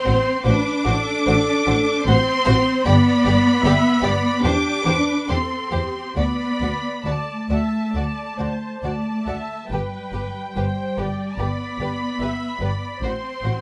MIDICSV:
0, 0, Header, 1, 6, 480
1, 0, Start_track
1, 0, Key_signature, 1, "major"
1, 0, Tempo, 796813
1, 1723, Time_signature, 4, 2, 24, 8
1, 2673, Tempo, 845070
1, 3153, Tempo, 883652
1, 5553, Tempo, 845070
1, 6513, Tempo, 815217
1, 7820, End_track
2, 0, Start_track
2, 0, Title_t, "Violin section"
2, 0, Program_c, 0, 48
2, 0, Note_on_c, 0, 84, 97
2, 269, Note_off_c, 0, 84, 0
2, 269, Note_on_c, 0, 86, 127
2, 1222, Note_off_c, 0, 86, 0
2, 1245, Note_on_c, 0, 84, 127
2, 1718, Note_on_c, 0, 83, 123
2, 1724, Note_off_c, 0, 84, 0
2, 2651, Note_off_c, 0, 83, 0
2, 2673, Note_on_c, 0, 86, 127
2, 3153, Note_off_c, 0, 86, 0
2, 3158, Note_on_c, 0, 84, 96
2, 3634, Note_off_c, 0, 84, 0
2, 3637, Note_on_c, 0, 83, 95
2, 4105, Note_off_c, 0, 83, 0
2, 4122, Note_on_c, 0, 81, 79
2, 5071, Note_off_c, 0, 81, 0
2, 5078, Note_on_c, 0, 81, 77
2, 5542, Note_off_c, 0, 81, 0
2, 5557, Note_on_c, 0, 79, 69
2, 6508, Note_on_c, 0, 83, 84
2, 6514, Note_off_c, 0, 79, 0
2, 7474, Note_off_c, 0, 83, 0
2, 7485, Note_on_c, 0, 84, 79
2, 7820, Note_off_c, 0, 84, 0
2, 7820, End_track
3, 0, Start_track
3, 0, Title_t, "Viola section"
3, 0, Program_c, 1, 48
3, 0, Note_on_c, 1, 72, 95
3, 272, Note_off_c, 1, 72, 0
3, 277, Note_on_c, 1, 71, 79
3, 517, Note_off_c, 1, 71, 0
3, 521, Note_on_c, 1, 69, 93
3, 1246, Note_off_c, 1, 69, 0
3, 1248, Note_on_c, 1, 72, 89
3, 1720, Note_on_c, 1, 74, 99
3, 1726, Note_off_c, 1, 72, 0
3, 2186, Note_on_c, 1, 76, 96
3, 2188, Note_off_c, 1, 74, 0
3, 2424, Note_off_c, 1, 76, 0
3, 2424, Note_on_c, 1, 74, 90
3, 2669, Note_on_c, 1, 67, 82
3, 2671, Note_off_c, 1, 74, 0
3, 2904, Note_off_c, 1, 67, 0
3, 2908, Note_on_c, 1, 71, 76
3, 3151, Note_off_c, 1, 71, 0
3, 3154, Note_on_c, 1, 69, 65
3, 3390, Note_on_c, 1, 67, 70
3, 3391, Note_off_c, 1, 69, 0
3, 3629, Note_on_c, 1, 74, 75
3, 3631, Note_off_c, 1, 67, 0
3, 4053, Note_off_c, 1, 74, 0
3, 4116, Note_on_c, 1, 74, 64
3, 4341, Note_off_c, 1, 74, 0
3, 4365, Note_on_c, 1, 76, 64
3, 4599, Note_off_c, 1, 76, 0
3, 4602, Note_on_c, 1, 74, 64
3, 4841, Note_off_c, 1, 74, 0
3, 4843, Note_on_c, 1, 72, 56
3, 5079, Note_off_c, 1, 72, 0
3, 5084, Note_on_c, 1, 74, 53
3, 5315, Note_on_c, 1, 76, 55
3, 5319, Note_off_c, 1, 74, 0
3, 5551, Note_off_c, 1, 76, 0
3, 5552, Note_on_c, 1, 71, 67
3, 6013, Note_off_c, 1, 71, 0
3, 6038, Note_on_c, 1, 72, 55
3, 6272, Note_off_c, 1, 72, 0
3, 6277, Note_on_c, 1, 74, 68
3, 6993, Note_off_c, 1, 74, 0
3, 6993, Note_on_c, 1, 76, 65
3, 7234, Note_off_c, 1, 76, 0
3, 7236, Note_on_c, 1, 74, 62
3, 7472, Note_off_c, 1, 74, 0
3, 7477, Note_on_c, 1, 72, 65
3, 7820, Note_off_c, 1, 72, 0
3, 7820, End_track
4, 0, Start_track
4, 0, Title_t, "Violin section"
4, 0, Program_c, 2, 48
4, 29, Note_on_c, 2, 72, 66
4, 30, Note_on_c, 2, 66, 71
4, 77, Note_off_c, 2, 72, 0
4, 79, Note_off_c, 2, 66, 0
4, 270, Note_on_c, 2, 72, 71
4, 271, Note_on_c, 2, 66, 72
4, 318, Note_off_c, 2, 72, 0
4, 319, Note_off_c, 2, 66, 0
4, 515, Note_on_c, 2, 66, 70
4, 518, Note_on_c, 2, 72, 75
4, 564, Note_off_c, 2, 66, 0
4, 566, Note_off_c, 2, 72, 0
4, 761, Note_on_c, 2, 72, 66
4, 767, Note_on_c, 2, 66, 72
4, 810, Note_off_c, 2, 72, 0
4, 815, Note_off_c, 2, 66, 0
4, 1003, Note_on_c, 2, 66, 67
4, 1005, Note_on_c, 2, 72, 78
4, 1051, Note_off_c, 2, 66, 0
4, 1053, Note_off_c, 2, 72, 0
4, 1246, Note_on_c, 2, 72, 73
4, 1248, Note_on_c, 2, 66, 80
4, 1294, Note_off_c, 2, 72, 0
4, 1296, Note_off_c, 2, 66, 0
4, 1479, Note_on_c, 2, 72, 86
4, 1482, Note_on_c, 2, 66, 81
4, 1527, Note_off_c, 2, 72, 0
4, 1530, Note_off_c, 2, 66, 0
4, 1722, Note_on_c, 2, 67, 75
4, 1722, Note_on_c, 2, 74, 82
4, 1770, Note_off_c, 2, 67, 0
4, 1770, Note_off_c, 2, 74, 0
4, 1963, Note_on_c, 2, 67, 79
4, 1964, Note_on_c, 2, 74, 73
4, 2011, Note_off_c, 2, 67, 0
4, 2012, Note_off_c, 2, 74, 0
4, 2195, Note_on_c, 2, 74, 80
4, 2197, Note_on_c, 2, 67, 89
4, 2243, Note_off_c, 2, 74, 0
4, 2245, Note_off_c, 2, 67, 0
4, 2424, Note_on_c, 2, 67, 75
4, 2429, Note_on_c, 2, 74, 79
4, 2472, Note_off_c, 2, 67, 0
4, 2477, Note_off_c, 2, 74, 0
4, 2671, Note_on_c, 2, 67, 75
4, 2677, Note_on_c, 2, 72, 77
4, 2717, Note_off_c, 2, 67, 0
4, 2722, Note_off_c, 2, 72, 0
4, 2915, Note_on_c, 2, 67, 72
4, 2915, Note_on_c, 2, 72, 73
4, 2960, Note_off_c, 2, 67, 0
4, 2961, Note_off_c, 2, 72, 0
4, 3156, Note_on_c, 2, 72, 74
4, 3157, Note_on_c, 2, 67, 70
4, 3199, Note_off_c, 2, 72, 0
4, 3200, Note_off_c, 2, 67, 0
4, 3387, Note_on_c, 2, 67, 68
4, 3389, Note_on_c, 2, 72, 60
4, 3431, Note_off_c, 2, 67, 0
4, 3432, Note_off_c, 2, 72, 0
4, 3630, Note_on_c, 2, 66, 57
4, 3630, Note_on_c, 2, 74, 63
4, 3673, Note_off_c, 2, 66, 0
4, 3674, Note_off_c, 2, 74, 0
4, 3875, Note_on_c, 2, 66, 49
4, 3875, Note_on_c, 2, 74, 47
4, 3918, Note_off_c, 2, 66, 0
4, 3918, Note_off_c, 2, 74, 0
4, 4116, Note_on_c, 2, 66, 50
4, 4118, Note_on_c, 2, 74, 57
4, 4159, Note_off_c, 2, 66, 0
4, 4161, Note_off_c, 2, 74, 0
4, 4359, Note_on_c, 2, 74, 49
4, 4360, Note_on_c, 2, 66, 49
4, 4402, Note_off_c, 2, 74, 0
4, 4403, Note_off_c, 2, 66, 0
4, 4603, Note_on_c, 2, 66, 43
4, 4605, Note_on_c, 2, 74, 46
4, 4647, Note_off_c, 2, 66, 0
4, 4649, Note_off_c, 2, 74, 0
4, 4842, Note_on_c, 2, 74, 43
4, 4843, Note_on_c, 2, 66, 43
4, 4885, Note_off_c, 2, 74, 0
4, 4886, Note_off_c, 2, 66, 0
4, 5083, Note_on_c, 2, 66, 46
4, 5084, Note_on_c, 2, 74, 51
4, 5127, Note_off_c, 2, 66, 0
4, 5127, Note_off_c, 2, 74, 0
4, 5320, Note_on_c, 2, 66, 45
4, 5320, Note_on_c, 2, 74, 50
4, 5363, Note_off_c, 2, 66, 0
4, 5364, Note_off_c, 2, 74, 0
4, 5566, Note_on_c, 2, 71, 54
4, 5568, Note_on_c, 2, 67, 52
4, 5612, Note_off_c, 2, 71, 0
4, 5613, Note_off_c, 2, 67, 0
4, 5800, Note_on_c, 2, 67, 43
4, 5801, Note_on_c, 2, 71, 53
4, 5845, Note_off_c, 2, 67, 0
4, 5847, Note_off_c, 2, 71, 0
4, 6041, Note_on_c, 2, 71, 48
4, 6043, Note_on_c, 2, 67, 53
4, 6086, Note_off_c, 2, 71, 0
4, 6088, Note_off_c, 2, 67, 0
4, 6279, Note_on_c, 2, 71, 48
4, 6280, Note_on_c, 2, 67, 52
4, 6324, Note_off_c, 2, 71, 0
4, 6326, Note_off_c, 2, 67, 0
4, 6512, Note_on_c, 2, 71, 49
4, 6516, Note_on_c, 2, 67, 53
4, 6559, Note_off_c, 2, 71, 0
4, 6563, Note_off_c, 2, 67, 0
4, 6757, Note_on_c, 2, 67, 48
4, 6760, Note_on_c, 2, 71, 47
4, 6805, Note_off_c, 2, 67, 0
4, 6807, Note_off_c, 2, 71, 0
4, 6994, Note_on_c, 2, 71, 50
4, 6995, Note_on_c, 2, 67, 51
4, 7041, Note_off_c, 2, 71, 0
4, 7042, Note_off_c, 2, 67, 0
4, 7233, Note_on_c, 2, 67, 48
4, 7234, Note_on_c, 2, 71, 53
4, 7280, Note_off_c, 2, 67, 0
4, 7281, Note_off_c, 2, 71, 0
4, 7482, Note_on_c, 2, 66, 52
4, 7483, Note_on_c, 2, 72, 50
4, 7529, Note_off_c, 2, 66, 0
4, 7530, Note_off_c, 2, 72, 0
4, 7718, Note_on_c, 2, 66, 51
4, 7721, Note_on_c, 2, 72, 44
4, 7765, Note_off_c, 2, 66, 0
4, 7768, Note_off_c, 2, 72, 0
4, 7820, End_track
5, 0, Start_track
5, 0, Title_t, "Cello section"
5, 0, Program_c, 3, 48
5, 0, Note_on_c, 3, 60, 109
5, 276, Note_off_c, 3, 60, 0
5, 277, Note_on_c, 3, 62, 106
5, 1226, Note_off_c, 3, 62, 0
5, 1250, Note_on_c, 3, 60, 122
5, 1727, Note_off_c, 3, 60, 0
5, 1733, Note_on_c, 3, 59, 127
5, 2658, Note_off_c, 3, 59, 0
5, 2676, Note_on_c, 3, 62, 106
5, 3155, Note_off_c, 3, 62, 0
5, 3160, Note_on_c, 3, 60, 87
5, 3635, Note_off_c, 3, 60, 0
5, 3639, Note_on_c, 3, 59, 94
5, 4106, Note_off_c, 3, 59, 0
5, 4114, Note_on_c, 3, 57, 72
5, 5072, Note_off_c, 3, 57, 0
5, 5079, Note_on_c, 3, 57, 75
5, 5543, Note_off_c, 3, 57, 0
5, 5552, Note_on_c, 3, 55, 69
5, 6492, Note_off_c, 3, 55, 0
5, 6514, Note_on_c, 3, 59, 70
5, 7474, Note_on_c, 3, 60, 72
5, 7477, Note_off_c, 3, 59, 0
5, 7820, Note_off_c, 3, 60, 0
5, 7820, End_track
6, 0, Start_track
6, 0, Title_t, "Double bass section"
6, 0, Program_c, 4, 48
6, 35, Note_on_c, 4, 33, 78
6, 83, Note_off_c, 4, 33, 0
6, 271, Note_on_c, 4, 33, 81
6, 320, Note_off_c, 4, 33, 0
6, 520, Note_on_c, 4, 33, 86
6, 568, Note_off_c, 4, 33, 0
6, 767, Note_on_c, 4, 33, 83
6, 815, Note_off_c, 4, 33, 0
6, 1007, Note_on_c, 4, 33, 83
6, 1055, Note_off_c, 4, 33, 0
6, 1247, Note_on_c, 4, 33, 85
6, 1295, Note_off_c, 4, 33, 0
6, 1488, Note_on_c, 4, 33, 91
6, 1536, Note_off_c, 4, 33, 0
6, 1725, Note_on_c, 4, 31, 96
6, 1774, Note_off_c, 4, 31, 0
6, 1960, Note_on_c, 4, 31, 82
6, 2009, Note_off_c, 4, 31, 0
6, 2192, Note_on_c, 4, 31, 89
6, 2240, Note_off_c, 4, 31, 0
6, 2430, Note_on_c, 4, 31, 85
6, 2478, Note_off_c, 4, 31, 0
6, 2678, Note_on_c, 4, 40, 90
6, 2723, Note_off_c, 4, 40, 0
6, 2912, Note_on_c, 4, 40, 73
6, 2957, Note_off_c, 4, 40, 0
6, 3159, Note_on_c, 4, 40, 64
6, 3203, Note_off_c, 4, 40, 0
6, 3390, Note_on_c, 4, 40, 70
6, 3434, Note_off_c, 4, 40, 0
6, 3635, Note_on_c, 4, 38, 71
6, 3678, Note_off_c, 4, 38, 0
6, 3873, Note_on_c, 4, 38, 61
6, 3916, Note_off_c, 4, 38, 0
6, 4110, Note_on_c, 4, 38, 61
6, 4154, Note_off_c, 4, 38, 0
6, 4355, Note_on_c, 4, 38, 51
6, 4399, Note_off_c, 4, 38, 0
6, 4599, Note_on_c, 4, 38, 61
6, 4643, Note_off_c, 4, 38, 0
6, 4839, Note_on_c, 4, 38, 53
6, 4882, Note_off_c, 4, 38, 0
6, 5079, Note_on_c, 4, 38, 48
6, 5123, Note_off_c, 4, 38, 0
6, 5318, Note_on_c, 4, 38, 53
6, 5361, Note_off_c, 4, 38, 0
6, 5560, Note_on_c, 4, 31, 67
6, 5606, Note_off_c, 4, 31, 0
6, 5796, Note_on_c, 4, 31, 58
6, 5842, Note_off_c, 4, 31, 0
6, 6041, Note_on_c, 4, 31, 62
6, 6086, Note_off_c, 4, 31, 0
6, 6279, Note_on_c, 4, 31, 55
6, 6324, Note_off_c, 4, 31, 0
6, 6507, Note_on_c, 4, 31, 56
6, 6554, Note_off_c, 4, 31, 0
6, 6747, Note_on_c, 4, 31, 55
6, 6794, Note_off_c, 4, 31, 0
6, 6989, Note_on_c, 4, 31, 48
6, 7036, Note_off_c, 4, 31, 0
6, 7230, Note_on_c, 4, 31, 58
6, 7277, Note_off_c, 4, 31, 0
6, 7468, Note_on_c, 4, 33, 63
6, 7516, Note_off_c, 4, 33, 0
6, 7710, Note_on_c, 4, 33, 61
6, 7757, Note_off_c, 4, 33, 0
6, 7820, End_track
0, 0, End_of_file